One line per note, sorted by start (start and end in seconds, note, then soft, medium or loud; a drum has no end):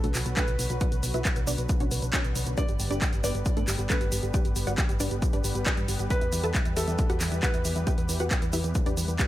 0.00 0.13 B1 medium
0.00 6.06 D3 medium
0.00 2.54 F#3 medium
0.00 0.13 A3 medium
0.00 9.27 B3 medium
0.00 0.13 D4 medium
0.00 2.54 F#4 medium
0.00 0.13 F#4 medium
0.00 0.28 A4 medium
0.00 0.13 A4 medium
0.00 2.54 B4 loud
0.00 closed hi-hat medium
0.00 shaker soft
0.14 0.24 B1 loud
0.14 0.24 F#4 medium
0.14 clap medium
0.14 open hi-hat loud
0.14 shaker medium
0.26 0.35 B1 medium
0.26 0.35 F#4 medium
0.26 closed hi-hat medium
0.26 shaker soft
0.37 0.46 A3 medium
0.37 0.46 D4 medium
0.37 0.46 F#4 medium
0.37 0.46 A4 medium
0.37 2.49 B4 medium
0.37 kick loud
0.37 clap loud
0.37 closed hi-hat medium
0.37 shaker medium
0.47 0.57 B1 medium
0.47 0.57 F#4 medium
0.47 closed hi-hat medium
0.47 shaker soft
0.59 0.68 B1 loud
0.59 0.68 F#4 medium
0.59 open hi-hat loud
0.59 shaker medium
0.70 0.79 B1 medium
0.70 0.79 F#4 medium
0.70 closed hi-hat medium
0.70 shaker soft
0.80 0.90 F#4 medium
0.80 0.90 B4 medium
0.80 0.90 D5 medium
0.80 0.90 F#5 loud
0.80 kick loud
0.80 closed hi-hat medium
0.80 shaker soft
0.92 1.01 B1 medium
0.92 1.01 B4 medium
0.92 closed hi-hat medium
0.92 shaker soft
1.03 1.12 B1 loud
1.03 1.12 B4 medium
1.03 open hi-hat loud
1.03 shaker medium
1.14 1.23 B1 medium
1.14 1.24 E4 medium
1.14 1.24 F#4 medium
1.14 1.24 B4 medium
1.14 1.23 E5 medium
1.14 closed hi-hat soft
1.14 shaker soft
1.25 kick loud
1.25 clap loud
1.25 closed hi-hat medium
1.25 shaker soft
1.36 1.45 B1 medium
1.36 1.46 B4 medium
1.36 closed hi-hat medium
1.36 shaker soft
1.47 1.56 B1 loud
1.47 1.57 D4 medium
1.47 1.57 F#4 medium
1.47 1.57 B4 medium
1.47 1.57 D5 medium
1.47 open hi-hat loud
1.47 shaker loud
1.58 1.67 B1 medium
1.58 1.68 B4 medium
1.58 closed hi-hat medium
1.58 shaker soft
1.69 1.79 B4 medium
1.69 kick loud
1.69 closed hi-hat medium
1.69 shaker medium
1.80 1.89 B1 medium
1.80 1.90 C#4 medium
1.80 1.90 D4 medium
1.80 1.90 F#4 medium
1.80 1.90 C#5 medium
1.80 closed hi-hat soft
1.80 shaker soft
1.91 2.00 B1 loud
1.91 2.01 B4 medium
1.91 open hi-hat loud
1.91 shaker loud
2.02 2.11 B1 medium
2.02 2.12 B4 medium
2.02 closed hi-hat medium
2.02 shaker soft
2.13 2.23 C#4 medium
2.13 2.23 D4 medium
2.13 2.23 F#4 medium
2.13 2.23 C#5 loud
2.13 kick loud
2.13 clap loud
2.13 closed hi-hat medium
2.13 shaker medium
2.24 2.33 B1 medium
2.24 2.34 B4 medium
2.24 closed hi-hat medium
2.24 shaker soft
2.35 2.44 B1 loud
2.35 2.45 B4 medium
2.35 open hi-hat loud
2.35 shaker loud
2.46 2.55 B1 medium
2.46 2.56 B4 medium
2.46 closed hi-hat medium
2.46 shaker soft
2.58 9.27 G3 medium
2.58 2.67 D4 medium
2.58 2.67 G4 medium
2.58 9.27 G4 medium
2.58 2.67 B4 medium
2.58 9.27 B4 medium
2.58 2.67 D5 loud
2.58 3.15 D5 loud
2.58 kick loud
2.58 closed hi-hat medium
2.58 shaker medium
2.68 2.77 G1 medium
2.68 2.78 G4 medium
2.68 closed hi-hat soft
2.68 shaker soft
2.80 2.88 G1 loud
2.80 2.89 G4 medium
2.80 open hi-hat loud
2.80 shaker medium
2.91 2.99 G1 medium
2.91 3.00 D4 medium
2.91 3.00 G4 medium
2.91 3.00 B4 medium
2.91 3.00 D5 loud
2.91 closed hi-hat soft
2.91 shaker soft
3.02 3.11 G4 medium
3.02 kick loud
3.02 clap loud
3.02 closed hi-hat medium
3.02 shaker medium
3.13 3.21 G1 medium
3.13 3.22 G4 medium
3.13 closed hi-hat soft
3.13 shaker soft
3.24 3.32 G1 loud
3.24 3.33 B3 medium
3.24 3.33 D4 medium
3.24 3.33 G4 medium
3.24 3.33 B4 medium
3.24 3.81 D5 medium
3.24 open hi-hat loud
3.24 shaker loud
3.35 3.43 G1 medium
3.35 3.44 G4 medium
3.35 closed hi-hat medium
3.35 shaker soft
3.45 3.55 G4 medium
3.45 kick loud
3.45 closed hi-hat medium
3.45 shaker medium
3.57 3.66 G1 medium
3.57 3.66 A3 medium
3.57 3.66 B3 medium
3.57 3.66 D4 medium
3.57 3.66 A4 medium
3.57 closed hi-hat soft
3.57 shaker soft
3.68 3.77 G1 medium
3.68 3.77 G4 medium
3.68 clap medium
3.68 open hi-hat loud
3.68 shaker loud
3.79 3.88 G1 medium
3.79 3.88 G4 medium
3.79 closed hi-hat soft
3.79 shaker soft
3.90 3.99 A3 medium
3.90 3.99 B3 medium
3.90 3.99 D4 medium
3.90 3.99 A4 medium
3.90 6.02 B4 medium
3.90 kick loud
3.90 clap loud
3.90 closed hi-hat medium
3.90 shaker medium
4.01 4.10 G1 medium
4.01 4.10 G4 medium
4.01 closed hi-hat soft
4.01 shaker soft
4.12 4.21 G1 loud
4.12 4.21 G4 medium
4.12 open hi-hat loud
4.12 shaker medium
4.23 4.32 G1 medium
4.23 4.32 G4 medium
4.23 closed hi-hat soft
4.23 shaker soft
4.34 4.43 G4 medium
4.34 4.43 B4 medium
4.34 4.43 D5 medium
4.34 4.43 G5 loud
4.34 kick loud
4.34 closed hi-hat medium
4.34 shaker medium
4.45 4.54 G1 medium
4.45 4.54 G4 medium
4.45 closed hi-hat soft
4.45 shaker soft
4.56 4.65 G1 medium
4.56 4.65 G4 medium
4.56 open hi-hat loud
4.56 shaker medium
4.67 4.76 G1 medium
4.67 4.76 F#4 medium
4.67 4.76 B4 medium
4.67 4.76 D5 medium
4.67 4.76 F#5 medium
4.67 closed hi-hat soft
4.67 shaker soft
4.78 4.87 G4 medium
4.78 kick loud
4.78 clap loud
4.78 closed hi-hat medium
4.78 shaker medium
4.89 4.98 G1 medium
4.89 4.99 G4 medium
4.89 closed hi-hat soft
4.89 shaker soft
5.00 5.09 G1 loud
5.00 5.09 D4 medium
5.00 5.10 G4 medium
5.00 5.09 B4 medium
5.00 5.10 D5 loud
5.00 open hi-hat loud
5.00 shaker loud
5.11 5.20 G1 medium
5.11 5.21 G4 medium
5.11 closed hi-hat soft
5.11 shaker soft
5.22 5.32 G4 medium
5.22 kick loud
5.22 closed hi-hat medium
5.22 shaker medium
5.33 5.42 G1 medium
5.33 5.43 D4 medium
5.33 5.43 G4 medium
5.33 5.43 B4 medium
5.33 5.43 D5 medium
5.33 closed hi-hat soft
5.33 shaker soft
5.44 5.53 G1 loud
5.44 5.54 G4 medium
5.44 open hi-hat loud
5.44 shaker loud
5.55 5.64 G1 medium
5.55 5.65 G4 medium
5.55 closed hi-hat soft
5.55 shaker soft
5.66 5.76 D4 medium
5.66 5.76 G4 medium
5.66 5.76 B4 medium
5.66 5.76 D5 medium
5.66 kick loud
5.66 clap loud
5.66 closed hi-hat medium
5.66 shaker medium
5.77 5.86 G2 medium
5.77 5.87 G4 medium
5.77 closed hi-hat soft
5.77 shaker soft
5.88 5.97 G1 loud
5.88 5.98 G4 medium
5.88 open hi-hat loud
5.88 shaker medium
5.99 6.08 G1 medium
5.99 6.09 G4 medium
5.99 closed hi-hat soft
5.99 shaker soft
6.10 9.27 E3 medium
6.10 6.68 B4 loud
6.10 6.20 B4 medium
6.10 6.20 E5 medium
6.10 6.20 G5 medium
6.10 6.20 B5 loud
6.10 kick loud
6.10 closed hi-hat medium
6.10 shaker soft
6.21 6.30 E2 medium
6.21 6.31 E5 medium
6.21 closed hi-hat soft
6.21 shaker soft
6.32 6.41 E2 medium
6.32 6.42 E5 medium
6.32 open hi-hat loud
6.32 shaker medium
6.43 6.52 E2 medium
6.43 6.53 A4 medium
6.43 6.53 B4 medium
6.43 6.53 E5 medium
6.43 6.53 A5 loud
6.43 closed hi-hat soft
6.43 shaker soft
6.55 6.64 E5 medium
6.55 kick loud
6.55 clap loud
6.55 closed hi-hat medium
6.55 shaker soft
6.65 6.74 E2 medium
6.65 6.75 E5 medium
6.65 closed hi-hat soft
6.65 shaker soft
6.77 6.85 E2 loud
6.77 6.86 G4 medium
6.77 7.34 A4 medium
6.77 6.86 B4 medium
6.77 6.86 E5 medium
6.77 6.86 G5 medium
6.77 open hi-hat loud
6.77 shaker loud
6.88 6.96 E2 medium
6.88 6.97 E5 medium
6.88 closed hi-hat medium
6.88 shaker soft
6.98 7.08 E5 medium
6.98 kick loud
6.98 closed hi-hat medium
6.98 shaker soft
7.10 7.18 E2 medium
7.10 7.19 F#4 medium
7.10 7.19 G4 medium
7.10 7.19 B4 medium
7.10 7.19 F#5 medium
7.10 closed hi-hat soft
7.10 shaker soft
7.20 7.29 E2 loud
7.20 7.30 E5 medium
7.20 clap medium
7.20 open hi-hat loud
7.20 shaker medium
7.32 7.41 E2 medium
7.32 7.41 E5 medium
7.32 closed hi-hat soft
7.32 shaker soft
7.43 7.52 F#4 medium
7.43 7.52 G4 medium
7.43 9.27 B4 medium
7.43 7.52 B4 medium
7.43 7.52 F#5 loud
7.43 kick loud
7.43 clap loud
7.43 closed hi-hat medium
7.43 shaker medium
7.54 7.63 E2 medium
7.54 7.63 E5 medium
7.54 closed hi-hat soft
7.54 shaker soft
7.65 7.74 E2 loud
7.65 7.74 E5 medium
7.65 open hi-hat loud
7.65 shaker medium
7.76 7.85 E2 medium
7.76 7.85 E5 medium
7.76 closed hi-hat soft
7.76 shaker soft
7.87 7.96 G4 medium
7.87 7.96 B4 medium
7.87 7.96 E5 medium
7.87 7.96 G5 loud
7.87 kick loud
7.87 closed hi-hat medium
7.87 shaker soft
7.98 8.07 E2 medium
7.98 8.07 B4 medium
7.98 closed hi-hat soft
7.98 shaker soft
8.09 8.18 E2 loud
8.09 8.18 B4 medium
8.09 open hi-hat loud
8.09 shaker medium
8.20 8.29 E2 medium
8.20 8.29 F#4 medium
8.20 8.29 G4 medium
8.20 8.29 B4 medium
8.20 8.29 F#5 loud
8.20 closed hi-hat medium
8.20 shaker soft
8.31 kick loud
8.31 clap loud
8.31 closed hi-hat medium
8.31 shaker medium
8.42 8.51 E2 medium
8.42 8.51 B4 medium
8.42 closed hi-hat medium
8.42 shaker soft
8.53 8.62 E2 loud
8.53 8.62 E4 medium
8.53 8.62 G4 medium
8.53 8.63 B4 medium
8.53 8.62 E5 loud
8.53 open hi-hat loud
8.53 shaker medium
8.64 8.73 E2 medium
8.64 8.74 B4 medium
8.64 closed hi-hat medium
8.64 shaker soft
8.75 8.85 B4 medium
8.75 kick loud
8.75 closed hi-hat medium
8.75 shaker medium
8.86 8.95 E2 medium
8.86 8.96 D4 medium
8.86 8.96 G4 medium
8.86 8.96 B4 medium
8.86 8.96 D5 medium
8.86 closed hi-hat soft
8.86 shaker soft
8.97 9.06 E2 loud
8.97 9.07 B4 medium
8.97 open hi-hat loud
8.97 shaker medium
9.08 9.17 E2 medium
9.08 9.18 B4 medium
9.08 closed hi-hat medium
9.08 shaker soft
9.19 9.27 D4 medium
9.19 9.27 G4 medium
9.19 9.27 B4 medium
9.19 9.27 D5 loud
9.19 kick loud
9.19 clap loud
9.19 closed hi-hat medium
9.19 shaker soft